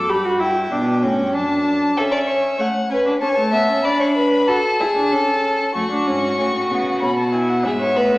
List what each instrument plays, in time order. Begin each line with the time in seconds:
Already playing: cello F#2, viola A4, violin D6
0.10 cello G2, viola G4, violin B5
0.25 viola F#4
0.40 viola E4, violin G5
0.72 cello B2, viola D4
1.03 cello A2, viola C#4
1.19 cello G2
1.34 cello F#2, viola D4, violin A5
1.97 viola C#4, violin A4 E5
2.11 violin D5
2.28 violin C#5
2.58 viola A3, violin C#5 F#5
2.90 viola C#4, violin B4 G#5
3.06 viola D4
3.21 viola C#4, violin C#5 A5
3.29 violin G#5
3.35 viola A3, violin A5
3.52 viola B3, violin E5
3.69 viola C#4
3.84 viola D4, violin D5 B5
4.00 violin C#5
4.16 violin B4
4.47 viola F#4, violin A4 A5
4.80 viola E4, violin G#4
4.96 viola D4
5.12 viola C#4, violin A4
5.74 cello F#2, viola A3, violin F#4 C#6
5.90 viola D4
6.06 cello G#2, viola C#4
6.38 cello A2, viola C#4
6.70 cello C#3, viola B3
7.01 cello B2, viola C#4, violin B5
7.17 violin A5
7.33 viola E4, violin G#5
7.49 violin F#5
7.64 cello G#2, viola B3, violin G#4 E5
7.80 violin C#5
7.95 cello A2, violin B4